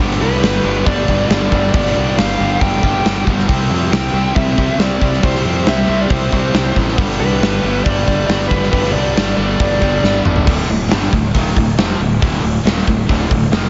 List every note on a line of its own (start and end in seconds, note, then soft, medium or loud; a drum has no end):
0.00 0.20 G1 medium
0.00 0.20 G2 loud
0.00 0.20 D3 loud
0.00 0.21 G3 loud
0.00 0.64 B3 loud
0.00 0.63 D4 loud
0.00 0.63 G4 medium
0.11 snare soft
0.20 0.42 C2 loud
0.20 0.41 G2 medium
0.20 0.41 D3 loud
0.20 0.42 G3 medium
0.20 0.86 B4 medium
0.20 crash medium
0.41 0.63 G1 medium
0.41 0.63 G2 loud
0.41 0.63 D3 loud
0.41 0.65 G3 loud
0.41 snare loud
0.41 crash medium
0.63 0.85 G1 medium
0.63 0.83 G2 medium
0.63 0.84 D3 medium
0.63 0.86 G3 loud
0.63 1.72 B3 medium
0.63 1.72 D4 medium
0.63 1.75 G4 medium
0.63 crash medium
0.85 1.07 G1 medium
0.85 1.06 G2 loud
0.85 1.07 D3 loud
0.85 1.08 G3 loud
0.85 1.29 D5 loud
0.85 kick loud
0.85 crash medium
1.07 1.29 G1 loud
1.07 1.27 G2 medium
1.07 1.28 D3 medium
1.07 1.30 G3 medium
1.07 kick medium
1.07 crash medium
1.28 1.50 G1 medium
1.28 1.48 G2 medium
1.28 1.49 D3 loud
1.28 1.51 G3 loud
1.28 1.74 D5 medium
1.28 snare loud
1.28 crash medium
1.50 1.72 G1 loud
1.50 1.70 G2 medium
1.50 1.71 D3 medium
1.50 1.73 G3 medium
1.50 kick medium
1.50 crash medium
1.72 1.94 G1 medium
1.72 1.93 G2 medium
1.72 1.93 D3 loud
1.72 1.95 G3 loud
1.72 2.38 B3 loud
1.72 2.38 D4 medium
1.72 2.39 G4 loud
1.72 2.19 D5 loud
1.72 kick loud
1.72 crash medium
1.86 snare soft
1.94 2.16 C2 medium
1.94 2.15 G2 medium
1.94 2.16 D3 loud
1.94 2.17 G3 loud
1.94 crash medium
2.17 2.38 G1 medium
2.17 2.37 G2 loud
2.17 2.37 D3 loud
2.17 2.39 G3 loud
2.17 2.61 F5 loud
2.17 snare loud
2.17 crash medium
2.38 2.60 G1 medium
2.38 2.58 G2 medium
2.38 2.59 D3 medium
2.38 2.61 G3 medium
2.38 3.48 B3 medium
2.38 3.47 D4 medium
2.38 3.50 G4 medium
2.38 crash medium
2.42 3.47 G2 medium
2.59 2.82 G1 loud
2.59 2.81 G2 loud
2.59 2.82 D3 loud
2.59 2.83 G3 loud
2.59 3.23 G5 loud
2.59 kick loud
2.59 crash medium
2.82 3.03 G1 medium
2.82 3.03 G2 medium
2.82 3.04 D3 medium
2.82 3.05 G3 medium
2.82 kick medium
2.82 crash medium
3.04 3.26 G1 loud
3.04 3.25 G2 medium
3.04 3.25 D3 loud
3.04 3.27 G3 loud
3.04 snare loud
3.04 crash medium
3.26 3.47 G1 medium
3.26 3.47 G2 medium
3.26 3.47 D3 medium
3.26 3.48 G3 medium
3.26 kick medium
3.26 crash medium
3.39 snare soft
3.48 3.69 C2 medium
3.48 3.69 C3 medium
3.48 3.69 G3 loud
3.48 3.70 C4 loud
3.48 4.14 E4 loud
3.48 4.14 G4 medium
3.48 4.13 C5 loud
3.48 kick loud
3.48 crash loud
3.69 3.90 F2 medium
3.69 3.90 C3 medium
3.69 3.91 G3 medium
3.69 3.91 C4 loud
3.69 crash medium
3.90 4.12 C2 medium
3.90 4.12 C3 medium
3.90 4.13 G3 medium
3.90 4.13 C4 medium
3.90 4.36 G5 loud
3.90 snare loud
3.90 crash medium
4.12 4.34 C2 medium
4.12 4.33 C3 medium
4.12 4.34 G3 medium
4.12 4.34 C4 medium
4.12 5.22 E4 medium
4.12 5.25 G4 medium
4.12 5.21 C5 medium
4.12 crash medium
4.34 4.56 C2 loud
4.34 4.55 C3 loud
4.34 4.56 G3 loud
4.34 4.56 C4 loud
4.34 4.77 E5 loud
4.34 kick loud
4.34 crash medium
4.56 4.78 C2 medium
4.56 4.78 C3 medium
4.56 4.79 G3 medium
4.56 4.79 C4 medium
4.56 kick medium
4.56 crash medium
4.78 4.99 C2 loud
4.78 4.99 C3 medium
4.78 5.01 G3 loud
4.78 5.01 C4 loud
4.78 5.21 D5 loud
4.78 snare loud
4.78 crash medium
5.00 5.22 C2 medium
5.00 5.21 C3 medium
5.00 5.22 G3 medium
5.00 5.22 C4 medium
5.00 kick medium
5.00 crash medium
5.13 snare soft
5.22 5.44 C2 medium
5.22 5.43 C3 loud
5.22 5.45 G3 loud
5.22 5.45 C4 loud
5.22 5.87 E4 loud
5.22 5.88 G4 loud
5.22 5.86 C5 loud
5.22 5.65 C5 loud
5.22 kick loud
5.22 crash medium
5.35 snare soft
5.44 5.65 F2 loud
5.44 5.65 C3 medium
5.44 5.67 G3 loud
5.44 5.66 C4 medium
5.44 crash medium
5.66 5.87 C2 medium
5.66 5.87 C3 loud
5.66 5.88 G3 loud
5.66 5.88 C4 loud
5.66 6.02 E5 loud
5.66 snare loud
5.66 crash medium
5.87 6.09 C2 loud
5.87 6.08 C3 loud
5.87 6.10 G3 medium
5.87 6.10 C4 medium
5.87 6.97 E4 medium
5.87 7.00 G4 medium
5.87 6.96 C5 medium
5.87 crash medium
6.01 6.11 D5 medium
6.10 6.31 C2 medium
6.10 6.31 C3 loud
6.10 6.32 G3 loud
6.10 6.32 C4 loud
6.10 6.76 C5 medium
6.10 kick loud
6.10 crash medium
6.32 6.53 C2 medium
6.32 6.52 C3 medium
6.32 6.54 G3 medium
6.32 6.54 C4 medium
6.32 kick medium
6.32 crash medium
6.54 6.74 C2 loud
6.54 6.75 C3 medium
6.54 6.76 G3 loud
6.54 6.76 C4 loud
6.54 snare loud
6.54 crash medium
6.76 6.97 A1 medium
6.76 6.96 C3 medium
6.76 6.97 G3 medium
6.76 6.97 C4 medium
6.76 kick medium
6.76 crash medium
6.88 snare soft
6.97 7.18 G1 loud
6.97 7.18 G2 medium
6.97 7.18 D3 loud
6.97 7.20 G3 loud
6.97 7.63 B3 loud
6.97 7.62 D4 loud
6.97 7.61 G4 loud
6.97 kick loud
6.97 crash loud
7.10 snare soft
7.19 7.40 C2 medium
7.19 7.40 G2 medium
7.19 7.40 D3 medium
7.19 7.42 G3 loud
7.19 7.84 B4 loud
7.19 crash medium
7.41 7.61 G1 medium
7.41 7.63 G2 loud
7.41 7.63 D3 loud
7.41 7.64 G3 loud
7.41 snare loud
7.41 crash medium
7.62 7.84 G1 medium
7.62 7.83 G2 loud
7.62 7.84 D3 loud
7.62 7.84 G3 medium
7.62 8.71 B3 medium
7.62 8.74 D4 medium
7.62 8.70 G4 medium
7.62 crash medium
7.84 8.06 G1 medium
7.84 8.04 G2 loud
7.84 8.05 D3 loud
7.84 8.06 G3 loud
7.84 8.25 D5 loud
7.84 kick loud
7.84 crash medium
8.06 8.28 G1 medium
8.06 8.26 G2 medium
8.06 8.27 D3 medium
8.06 8.28 G3 medium
8.06 kick medium
8.06 crash medium
8.27 8.49 G1 loud
8.27 8.48 G2 loud
8.27 8.50 D3 loud
8.27 8.50 G3 loud
8.27 8.47 D5 loud
8.27 snare loud
8.27 crash medium
8.48 8.71 G1 medium
8.48 8.70 G2 medium
8.48 8.70 D3 medium
8.48 8.71 G3 medium
8.48 8.70 B4 loud
8.48 kick medium
8.48 crash medium
8.63 snare soft
8.71 8.93 G1 medium
8.71 8.92 G2 loud
8.71 8.93 D3 loud
8.71 8.94 G3 loud
8.71 9.37 B3 loud
8.71 9.36 D4 loud
8.71 9.36 G4 loud
8.71 8.92 B4 loud
8.71 kick loud
8.71 crash medium
8.84 snare soft
8.93 9.14 C2 medium
8.93 9.13 G2 medium
8.93 9.14 D3 medium
8.93 9.15 G3 loud
8.93 9.36 D5 loud
8.93 crash medium
9.15 9.36 G1 medium
9.15 9.36 G2 medium
9.15 9.37 D3 loud
9.15 9.38 G3 loud
9.15 snare loud
9.15 crash medium
9.37 9.58 G1 medium
9.37 9.59 G2 medium
9.37 9.60 D3 medium
9.37 9.60 G3 medium
9.37 10.46 B3 medium
9.37 10.46 D4 medium
9.37 10.45 G4 medium
9.37 10.21 D5 medium
9.37 crash medium
9.60 9.80 G1 medium
9.60 9.81 G2 loud
9.60 9.82 D3 loud
9.60 9.82 G3 loud
9.60 kick loud
9.60 crash medium
9.82 10.02 G1 loud
9.82 10.03 G2 medium
9.82 10.03 D3 medium
9.82 10.04 G3 medium
9.82 kick medium
9.82 crash medium
10.03 10.24 G1 medium
10.03 10.23 G2 loud
10.03 10.24 D3 loud
10.03 10.25 G3 loud
10.03 snare medium
10.25 10.46 G1 medium
10.25 10.46 G2 medium
10.25 10.46 D3 medium
10.25 10.46 G3 medium
10.25 mid tom loud
10.36 floor tom medium
10.47 10.68 D1 medium
10.47 10.68 D2 medium
10.47 10.68 A2 loud
10.47 10.69 D3 loud
10.47 kick loud
10.47 crash loud
10.69 10.89 D1 medium
10.69 10.87 D2 medium
10.69 10.87 A2 medium
10.69 open hi-hat medium
10.90 11.12 G1 medium
10.90 11.12 G2 medium
10.90 11.12 D3 loud
10.90 11.13 G3 loud
10.90 snare loud
10.90 open hi-hat loud
11.03 snare soft
11.13 11.33 D1 medium
11.13 11.30 D2 medium
11.13 11.30 A2 medium
11.13 kick medium
11.13 open hi-hat medium
11.34 11.55 D#1 loud
11.34 11.55 D#2 loud
11.34 11.56 A#2 loud
11.34 11.56 D#3 loud
11.34 kick loud
11.34 open hi-hat loud
11.56 11.77 D1 medium
11.56 11.74 D2 medium
11.56 11.74 A2 medium
11.56 kick loud
11.56 open hi-hat medium
11.78 11.98 F1 loud
11.78 11.99 F2 loud
11.78 12.00 C3 loud
11.78 12.00 F3 loud
11.78 snare loud
11.78 open hi-hat medium
12.00 12.20 D1 medium
12.00 12.18 D2 medium
12.00 12.18 A2 medium
12.00 open hi-hat medium
12.22 12.42 D1 medium
12.22 12.43 D2 loud
12.22 12.43 A2 loud
12.22 12.44 D3 loud
12.22 kick loud
12.22 open hi-hat medium
12.43 12.64 D1 medium
12.43 12.61 D2 medium
12.43 12.61 A2 medium
12.43 open hi-hat medium
12.64 12.85 D#1 loud
12.64 12.87 D#2 medium
12.64 12.87 A#2 medium
12.64 12.87 D#3 medium
12.64 snare loud
12.64 open hi-hat medium
12.78 snare soft
12.87 13.08 D1 medium
12.87 13.05 D2 medium
12.87 13.05 A2 medium
12.87 kick medium
12.87 open hi-hat medium
13.09 13.29 D1 loud
13.09 13.30 D2 loud
13.09 13.31 A2 loud
13.09 13.31 D3 loud
13.09 kick loud
13.09 open hi-hat medium
13.31 13.51 D1 medium
13.31 13.49 D2 medium
13.31 13.49 A2 medium
13.31 kick loud
13.31 open hi-hat medium
13.51 13.69 F1 loud
13.51 13.69 F2 loud
13.51 13.69 C3 loud
13.51 13.69 F3 loud
13.51 snare loud
13.51 open hi-hat medium